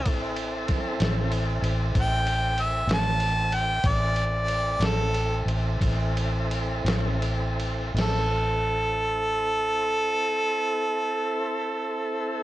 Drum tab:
CC |------------|------------|x-----------|
RD |xxxxxxxxxxxx|xxxxxxxxxxxx|------------|
SD |--oo-----o--|---o-----o--|o-----------|
BD |o-o---o-----|o-----o-----|------------|